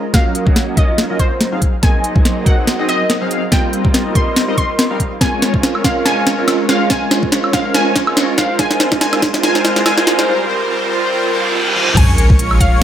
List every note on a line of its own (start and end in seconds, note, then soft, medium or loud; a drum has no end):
0.00 0.16 G#3 medium
0.00 0.16 C4 medium
0.00 0.14 C#4 medium
0.00 0.16 F4 medium
0.00 0.13 A#4 medium
0.13 0.43 F#3 medium
0.13 0.44 F#3 medium
0.13 0.44 A#3 medium
0.13 0.44 C#4 medium
0.13 0.44 F4 medium
0.13 0.44 F#4 medium
0.13 0.44 A#4 medium
0.13 0.44 D#5 medium
0.13 0.33 F5 loud
0.13 kick loud
0.13 snare medium
0.13 closed hi-hat medium
0.35 closed hi-hat medium
0.45 0.73 F#3 medium
0.45 0.75 F#3 medium
0.45 0.75 A#3 medium
0.45 0.75 C#4 medium
0.45 0.75 F4 medium
0.45 0.75 F#4 medium
0.45 0.75 A#4 medium
0.45 0.75 D#5 medium
0.45 kick loud
0.56 snare medium
0.56 closed hi-hat medium
0.75 1.60 F#3 medium
0.75 0.98 F#3 medium
0.75 1.60 A#3 medium
0.75 0.98 C#4 medium
0.75 1.61 C#4 medium
0.75 0.98 F4 medium
0.75 1.61 F4 loud
0.75 0.98 A#4 medium
0.75 0.98 D#5 loud
0.75 1.03 D#5 medium
0.75 kick loud
0.75 closed hi-hat medium
0.98 snare medium
0.98 closed hi-hat medium
1.10 1.18 F#3 loud
1.10 1.18 C#4 medium
1.10 1.18 F4 medium
1.10 1.18 A#4 medium
1.10 1.18 D#5 loud
1.19 1.34 F#3 medium
1.19 1.34 C#4 medium
1.19 1.34 F4 medium
1.19 1.34 A#4 medium
1.19 1.75 C5 loud
1.19 kick medium
1.19 closed hi-hat medium
1.41 snare medium
1.41 closed hi-hat medium
1.52 1.74 F#3 medium
1.52 1.74 C4 medium
1.52 1.74 D#4 medium
1.52 1.74 G#4 medium
1.52 1.74 F5 medium
1.62 kick medium
1.62 closed hi-hat medium
1.82 2.12 F#3 medium
1.82 2.13 F#3 medium
1.82 2.13 A#3 medium
1.82 2.13 C4 medium
1.82 2.13 D#4 medium
1.82 2.13 G#4 medium
1.82 2.13 D#5 medium
1.82 2.02 G#5 loud
1.82 kick loud
1.82 snare medium
1.82 closed hi-hat medium
2.04 closed hi-hat medium
2.15 2.43 F#3 medium
2.15 2.44 F#3 medium
2.15 2.44 A#3 medium
2.15 2.44 C4 medium
2.15 2.44 D#4 medium
2.15 2.45 D#4 medium
2.15 2.44 G#4 medium
2.15 2.44 D#5 medium
2.15 kick loud
2.25 snare medium
2.25 closed hi-hat medium
2.44 3.49 F#3 medium
2.44 2.68 F#3 medium
2.44 3.49 A#3 medium
2.44 2.68 C4 medium
2.44 3.50 C4 medium
2.44 2.68 D#4 medium
2.44 3.51 F#4 medium
2.44 2.68 G#4 medium
2.44 2.68 D#5 medium
2.44 2.72 F#5 medium
2.44 kick loud
2.44 closed hi-hat medium
2.67 snare medium
2.67 closed hi-hat medium
2.79 2.87 F#3 loud
2.79 2.87 C4 medium
2.79 2.87 D#4 medium
2.79 2.87 G#4 medium
2.79 2.87 D#5 loud
2.88 3.03 F#3 medium
2.88 3.03 C4 medium
2.88 3.03 D#4 medium
2.88 3.03 G#4 medium
2.88 3.03 D#5 loud
2.88 3.45 D#5 loud
2.88 closed hi-hat medium
3.10 snare medium
3.10 closed hi-hat medium
3.21 3.43 F#3 medium
3.21 3.43 C4 medium
3.21 3.43 D#4 medium
3.21 3.43 G#4 medium
3.21 3.43 F5 medium
3.31 closed hi-hat medium
3.51 3.81 G3 medium
3.51 3.82 G3 medium
3.51 3.82 A#3 medium
3.51 3.82 C4 medium
3.51 3.82 D#4 medium
3.51 3.82 F4 medium
3.51 3.82 A#4 medium
3.51 3.82 D#5 medium
3.51 3.71 G5 loud
3.51 kick loud
3.51 snare medium
3.51 closed hi-hat medium
3.73 closed hi-hat medium
3.84 4.12 G3 medium
3.84 4.13 G3 medium
3.84 4.13 A#3 medium
3.84 4.13 C4 medium
3.84 4.13 D#4 medium
3.84 4.13 F4 medium
3.84 4.13 A#4 medium
3.84 4.13 D#5 medium
3.84 kick loud
3.94 snare medium
3.94 closed hi-hat medium
4.13 5.18 G3 medium
4.13 4.37 G3 medium
4.13 5.18 A#3 medium
4.13 4.37 C4 medium
4.13 5.19 C4 medium
4.13 4.37 D#4 medium
4.13 4.37 A#4 medium
4.13 4.37 D#5 loud
4.13 4.41 C6 medium
4.13 kick loud
4.13 closed hi-hat medium
4.17 5.20 D#4 loud
4.36 snare medium
4.36 closed hi-hat medium
4.48 4.56 G3 medium
4.48 4.56 C4 medium
4.48 4.56 D#4 medium
4.48 4.56 A#4 medium
4.48 4.56 D#5 loud
4.58 4.72 G3 medium
4.58 4.72 C4 medium
4.58 4.72 D#4 medium
4.58 4.72 A#4 medium
4.58 4.72 D#5 loud
4.58 5.13 C6 medium
4.58 kick medium
4.58 closed hi-hat medium
4.79 snare medium
4.79 closed hi-hat medium
4.90 5.12 G3 medium
4.90 5.12 C4 medium
4.90 5.12 D#4 medium
4.90 5.12 A#4 medium
4.90 5.12 F5 medium
5.00 kick medium
5.00 closed hi-hat medium
5.20 5.51 G#3 medium
5.20 5.51 C4 medium
5.20 5.51 C#4 medium
5.20 5.51 F4 medium
5.20 5.51 A#4 medium
5.20 5.51 C#5 medium
5.20 5.40 G#5 medium
5.20 kick loud
5.20 snare medium
5.20 closed hi-hat medium
5.20 riser medium
5.42 snare medium
5.42 closed hi-hat medium
5.53 5.81 G#3 medium
5.53 5.82 G#3 medium
5.53 5.82 C4 medium
5.53 5.82 C#4 medium
5.53 5.82 F4 medium
5.53 5.83 F4 medium
5.53 5.82 A#4 medium
5.53 5.82 C#5 medium
5.53 kick loud
5.63 snare medium
5.63 closed hi-hat medium
5.75 high woodblock medium
5.82 6.03 G#3 medium
5.82 6.04 G#3 medium
5.82 6.04 C4 medium
5.82 6.04 C#4 medium
5.82 6.04 F4 medium
5.82 6.04 A#4 medium
5.82 6.05 A#4 medium
5.82 6.04 C#5 medium
5.82 6.04 F5 medium
5.82 kick loud
5.82 snare medium
5.82 closed hi-hat medium
6.05 6.35 G#3 medium
6.05 6.36 G#3 medium
6.05 6.35 C4 medium
6.05 6.36 C#4 medium
6.05 6.36 F4 medium
6.05 6.36 A#4 medium
6.05 6.36 C#5 medium
6.05 6.25 G#5 medium
6.05 snare medium
6.05 closed hi-hat medium
6.27 snare medium
6.27 closed hi-hat medium
6.37 6.65 G#3 medium
6.37 6.67 G#3 medium
6.37 6.66 C4 medium
6.37 6.67 C#4 medium
6.37 6.67 F4 medium
6.37 6.67 A#4 medium
6.37 6.67 C#5 medium
6.48 snare medium
6.48 closed hi-hat medium
6.48 high woodblock medium
6.67 6.87 G#3 medium
6.67 6.88 G#3 medium
6.67 6.88 C4 medium
6.67 6.88 C#4 medium
6.67 6.89 C#4 medium
6.67 6.89 F4 medium
6.67 6.88 A#4 medium
6.67 6.89 A#4 medium
6.67 6.89 C#5 medium
6.67 6.89 F5 medium
6.67 snare medium
6.67 closed hi-hat medium
6.89 7.19 G#3 medium
6.89 7.20 C4 medium
6.89 7.20 C#4 medium
6.89 7.20 F4 medium
6.89 7.09 G#5 medium
6.89 kick loud
6.89 snare medium
6.89 closed hi-hat medium
7.11 snare medium
7.11 closed hi-hat medium
7.22 7.50 G#3 medium
7.22 7.51 G#3 medium
7.22 7.51 C4 medium
7.22 7.51 C#4 medium
7.22 7.51 F4 medium
7.22 7.52 F4 medium
7.22 7.51 A#4 medium
7.22 7.51 C#5 medium
7.22 kick loud
7.32 snare medium
7.32 closed hi-hat medium
7.44 high woodblock medium
7.51 7.72 G#3 medium
7.51 7.73 G#3 medium
7.51 7.72 C4 medium
7.51 7.73 C#4 medium
7.51 7.73 F4 medium
7.51 7.73 A#4 medium
7.51 7.74 A#4 medium
7.51 7.73 C#5 medium
7.51 7.73 F5 medium
7.51 kick loud
7.51 snare medium
7.51 closed hi-hat medium
7.73 8.04 G#3 medium
7.73 8.04 C4 medium
7.73 8.04 C#4 medium
7.73 8.05 C#4 medium
7.73 8.04 F4 medium
7.73 8.05 F4 medium
7.73 8.04 A#4 medium
7.73 8.04 C#5 medium
7.73 7.94 G#5 medium
7.73 snare medium
7.73 closed hi-hat medium
7.96 kick medium
7.96 snare medium
7.96 closed hi-hat medium
8.06 8.34 G#3 medium
8.06 8.36 G#3 medium
8.06 8.35 C4 medium
8.06 8.36 C#4 medium
8.06 8.36 F4 medium
8.06 8.36 A#4 medium
8.06 8.36 C#5 medium
8.06 high woodblock medium
8.17 snare medium
8.17 closed hi-hat medium
8.36 8.57 G#3 medium
8.36 8.57 C4 medium
8.36 8.57 F4 medium
8.36 8.57 A#4 medium
8.36 8.57 C5 medium
8.36 8.57 F5 medium
8.36 kick medium
8.36 snare medium
8.36 closed hi-hat medium
8.40 8.59 A#4 medium
8.58 8.89 G#3 medium
8.58 8.89 C4 medium
8.58 8.89 F4 medium
8.58 8.90 F4 medium
8.58 8.89 A#4 medium
8.58 8.89 C5 medium
8.58 8.78 G#5 loud
8.58 kick loud
8.58 snare medium
8.58 closed hi-hat medium
8.71 snare medium
8.80 snare medium
8.80 closed hi-hat medium
8.91 8.99 G#3 medium
8.91 9.00 G#3 medium
8.91 9.00 C4 medium
8.91 9.00 F4 medium
8.91 9.00 A#4 medium
8.91 9.00 C5 medium
8.91 kick loud
8.91 snare medium
9.00 9.31 G#3 medium
9.00 9.31 C4 medium
9.00 9.31 F4 medium
9.00 9.32 F4 medium
9.00 9.31 A#4 medium
9.00 9.31 C5 medium
9.00 9.21 G#5 medium
9.00 snare loud
9.00 closed hi-hat medium
9.13 snare medium
9.13 high woodblock medium
9.22 kick loud
9.22 snare loud
9.22 closed hi-hat medium
9.33 9.41 G#3 medium
9.33 9.42 G#3 medium
9.33 9.42 C4 medium
9.33 9.42 F4 medium
9.33 9.42 A#4 medium
9.33 9.42 C5 medium
9.33 snare medium
9.42 9.73 G#3 medium
9.42 9.74 G#3 medium
9.42 9.73 C4 medium
9.42 9.74 C4 medium
9.42 9.74 F4 medium
9.42 9.74 A#4 medium
9.42 9.74 C5 medium
9.42 9.63 G#5 loud
9.42 snare loud
9.42 closed hi-hat medium
9.55 snare medium
9.65 snare medium
9.65 closed hi-hat medium
9.75 9.83 G#3 medium
9.75 9.84 G#3 medium
9.75 9.84 C4 medium
9.75 9.84 F4 medium
9.75 9.85 F4 medium
9.75 9.84 A#4 medium
9.75 9.84 C5 medium
9.75 snare medium
9.85 10.15 G#3 medium
9.85 10.16 G#3 medium
9.85 10.16 C4 medium
9.85 10.16 F4 medium
9.85 10.16 A#4 medium
9.85 10.16 C5 medium
9.85 10.05 G#5 loud
9.85 snare loud
9.85 closed hi-hat medium
9.85 high woodblock medium
9.98 snare medium
10.07 snare loud
10.07 closed hi-hat medium
10.17 10.26 G#3 medium
10.17 10.27 G#3 medium
10.17 10.26 C4 medium
10.17 10.27 C4 medium
10.17 10.27 F4 medium
10.17 10.27 A#4 medium
10.17 10.27 C5 medium
10.17 snare medium
10.28 10.48 G3 medium
10.28 10.48 C4 medium
10.28 10.48 F4 medium
10.28 10.48 A#4 medium
10.28 10.48 C5 medium
10.49 10.69 G3 medium
10.49 10.69 C4 medium
10.49 10.69 F4 medium
10.49 10.69 A#4 medium
10.49 10.69 C5 medium
10.70 10.90 G3 medium
10.70 10.90 C4 medium
10.70 10.90 F4 medium
10.70 10.90 A#4 medium
10.70 10.90 C5 medium
10.91 11.11 G3 medium
10.91 11.11 C4 medium
10.91 11.11 F4 medium
10.91 11.11 A#4 medium
10.91 11.11 C5 medium
11.12 11.32 G3 medium
11.12 11.32 C4 medium
11.12 11.32 F4 medium
11.12 11.32 A#4 medium
11.12 11.32 C5 medium
11.12 reverse cymbal medium
11.34 11.53 G3 medium
11.34 11.53 C4 medium
11.34 11.53 F4 medium
11.34 11.53 A#4 medium
11.34 11.53 C5 medium
11.55 11.74 G3 medium
11.55 11.74 C4 medium
11.55 11.74 F4 medium
11.55 11.74 A#4 medium
11.55 11.74 C5 medium
11.76 11.96 G3 medium
11.76 11.96 C4 medium
11.76 11.96 F4 medium
11.76 11.96 A#4 medium
11.76 11.96 C5 medium
11.76 high tom medium
11.88 mid tom medium
11.97 12.83 A#1 medium
11.97 12.27 G#3 medium
11.97 12.27 C#4 medium
11.97 12.16 G#5 loud
11.97 12.27 C#6 medium
11.97 kick loud
11.97 closed hi-hat medium
11.97 crash loud
11.97 sub drop medium
12.18 closed hi-hat medium
12.30 12.58 G#3 medium
12.30 12.58 C#4 medium
12.30 12.58 F4 medium
12.30 12.58 A#4 medium
12.30 12.58 C#5 medium
12.30 12.58 C#6 medium
12.30 kick loud
12.39 closed hi-hat medium
12.51 high woodblock medium
12.60 12.82 G#3 medium
12.60 12.82 C#4 medium
12.60 12.82 F4 medium
12.60 12.82 A#4 medium
12.60 12.82 C#5 loud
12.60 12.83 F5 medium
12.60 12.82 C#6 medium
12.60 kick medium
12.60 closed hi-hat medium